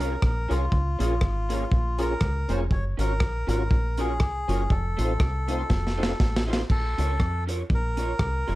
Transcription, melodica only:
0.00 0.24 A#4 medium
0.25 0.52 A#4 medium
0.52 2.05 F4 medium
2.02 2.52 A#4 loud
2.50 2.60 C5 medium
2.72 2.84 C#5 loud
3.00 3.48 A#4 loud
3.50 4.00 A#4 medium
4.00 4.73 G#4 medium
4.71 6.44 A4 medium
6.71 7.44 A4 loud
7.75 8.55 A#4 loud

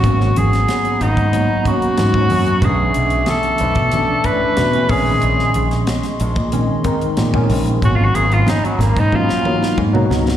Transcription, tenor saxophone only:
0.00 0.39 F#4 medium
0.38 1.04 G#4 medium
1.02 1.67 D#4 medium
1.67 2.66 F#4 medium
2.65 3.31 G#4 medium
3.30 4.27 A4 medium
4.26 4.91 B4 loud
4.90 5.88 G#4 medium
7.85 7.97 F#4 medium
7.96 8.06 F4 medium
8.05 8.16 F#4 medium
8.15 8.35 G#4 loud
8.34 8.51 F4 medium
8.49 8.66 D#4 medium
8.65 8.83 F#3 medium
8.82 9.01 A#3 medium
9.00 9.17 D#4 medium
9.15 9.79 F4 medium

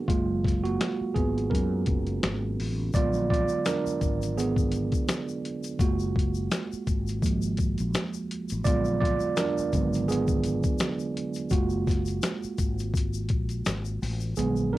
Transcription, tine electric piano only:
0.00 0.11 B3 medium
0.00 0.10 D4 medium
0.00 0.11 F#4 medium
0.00 0.10 G#4 medium
0.08 2.90 F#3 medium
0.08 0.61 G#3 medium
0.08 0.64 A#3 medium
0.08 0.66 F4 medium
0.64 1.12 A#3 medium
0.64 1.17 F#4 medium
1.14 1.49 B3 medium
1.14 1.52 G#4 medium
1.50 2.55 C#4 medium
1.50 2.54 A#4 medium
2.95 5.76 D3 medium
2.95 5.76 F#3 medium
2.95 5.77 G#3 soft
2.95 4.37 B3 medium
2.95 3.29 F4 medium
2.95 3.29 D5 loud
3.30 3.64 F4 medium
3.30 3.67 D5 loud
3.66 4.34 D4 medium
3.66 4.33 A#4 medium
4.37 5.76 B3 medium
4.37 5.84 G#4 medium
5.80 7.22 G#3 medium
5.80 7.20 A#3 medium
5.80 8.62 F4 medium
5.80 7.19 F#4 medium
7.23 7.55 F3 medium
7.23 7.55 G#3 soft
7.23 7.55 A#3 soft
8.65 9.73 D3 medium
8.65 9.73 F#3 medium
8.65 9.73 G#3 medium
8.65 9.74 B3 medium
8.65 8.99 F4 medium
8.65 8.99 D5 loud
9.01 9.35 F4 medium
9.01 9.38 D5 loud
9.37 10.05 D4 medium
9.37 10.10 A#4 medium
9.74 10.05 D3 soft
9.74 10.05 F#3 soft
9.74 10.06 G#3 soft
9.74 10.06 B3 medium
10.08 11.48 B3 medium
10.08 11.47 G#4 loud
11.51 12.55 G#3 medium
11.51 12.91 A#3 medium
11.51 12.55 F4 medium
11.51 12.90 F#4 medium
14.37 14.78 D3 medium
14.37 14.78 F#3 medium
14.37 14.78 G#3 medium
14.37 14.78 B3 medium
14.37 14.70 G#4 medium
14.73 14.78 D4 medium
14.73 14.78 A#4 medium

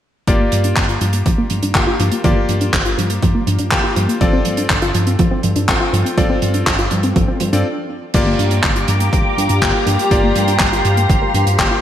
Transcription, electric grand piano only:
0.28 1.72 A#3 medium
0.28 1.72 F4 medium
0.28 1.72 G4 medium
0.28 1.72 D5 medium
1.75 2.21 A#3 medium
1.75 2.21 F4 medium
1.75 2.21 G4 medium
1.75 2.21 G5 medium
2.24 3.69 A#3 medium
2.24 3.69 F4 medium
2.24 3.69 G4 medium
2.24 3.69 D5 medium
3.72 4.18 A#3 medium
3.72 4.18 F4 medium
3.72 4.18 G4 medium
3.72 4.18 G5 medium
4.21 5.66 C4 medium
4.21 5.66 F4 medium
4.21 5.66 A4 medium
4.21 5.66 D5 medium
5.68 6.15 C4 medium
5.68 6.15 F4 medium
5.68 6.15 A4 medium
5.68 6.15 G5 medium
6.17 7.50 C4 medium
6.17 7.50 F4 medium
6.17 7.50 A4 medium
6.17 7.50 D5 medium
7.53 7.65 C4 medium
7.53 7.65 F4 medium
7.53 7.65 A4 medium
7.53 7.65 D5 medium
8.14 9.59 A#3 medium
8.14 9.59 F4 medium
8.14 9.59 G4 medium
8.14 9.59 D5 medium
9.62 10.08 A#3 medium
9.62 10.08 F4 medium
9.62 10.08 G4 medium
9.62 10.08 G5 medium
10.11 11.56 A#3 medium
10.11 11.56 F4 medium
10.11 11.56 G4 medium
10.11 11.56 D5 medium
11.59 11.81 A#3 medium
11.59 11.81 F4 medium
11.59 11.81 G4 medium
11.59 11.81 G5 medium

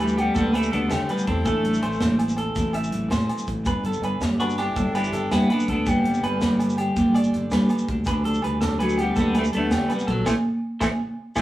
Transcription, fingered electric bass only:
0.00 0.29 D2 medium
0.37 0.68 D2 loud
0.73 0.89 D2 medium
0.91 1.07 D3 medium
1.28 1.44 E2 medium
1.46 1.78 A1 medium
1.84 1.99 A1 medium
2.01 2.48 A1 medium
2.57 2.88 A1 loud
2.95 3.10 A1 medium
3.11 3.27 A2 medium
3.48 3.64 A1 medium
3.66 3.98 G1 medium
4.02 4.18 G1 medium
4.20 4.68 G1 medium
4.77 5.08 G1 medium
5.12 5.28 G1 medium
5.31 5.47 G2 medium
5.69 5.84 D2 medium
5.87 6.19 G1 loud
6.23 6.39 G1 medium
6.41 6.89 G1 medium
6.97 7.28 G1 loud
7.35 7.50 G1 medium
7.52 7.67 G2 medium
7.89 8.04 D2 medium
8.08 8.39 D2 loud
8.45 8.60 D2 medium
8.63 9.10 D2 medium
9.17 9.49 D2 loud
9.56 9.70 D2 medium
9.72 9.88 D3 medium
10.09 10.24 A#1 medium
10.27 10.34 A1 medium
10.81 10.88 A1 medium
11.37 11.42 A1 medium

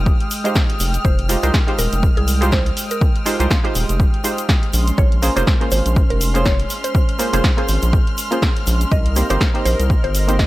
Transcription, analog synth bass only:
0.00 0.11 F1 loud
0.80 0.98 F1 medium
1.05 1.36 F1 loud
1.43 1.51 C2 loud
1.78 1.88 D#1 loud
1.92 2.08 F1 loud
2.17 2.71 C2 loud
3.40 3.47 C2 loud
3.75 3.85 D#1 loud
3.89 4.05 F1 loud
4.73 4.91 A#1 medium
4.98 5.30 A#1 loud
5.37 5.44 F1 loud
5.72 5.81 G#1 loud
5.86 6.02 A#1 loud
6.10 6.65 F1 loud
7.33 7.41 F1 loud
7.69 7.78 G#1 loud
7.83 7.98 A#1 loud
8.67 8.85 A#1 loud
8.92 9.23 C2 medium
9.30 9.37 G1 loud
9.65 9.75 A#1 loud
9.79 9.95 C2 loud
10.04 10.47 G1 loud

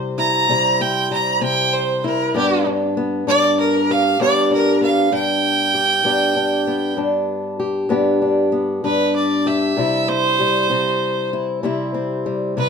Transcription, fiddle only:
0.18 0.83 A#5 medium
0.82 1.11 G5 medium
1.13 1.42 A#5 medium
1.43 1.74 G5 medium
1.73 2.03 C5 medium
2.06 2.35 A#4 medium
2.36 2.65 G4 medium
3.29 3.58 D5 loud
3.60 3.92 A#4 medium
3.91 4.20 F5 medium
4.21 4.50 D5 loud
4.53 4.82 A#4 medium
4.83 5.12 F5 medium
5.14 6.95 G5 loud
8.84 9.14 B4 medium
9.16 9.49 D5 medium
9.47 10.10 E5 medium
10.09 11.29 C5 loud
12.58 12.69 B4 medium

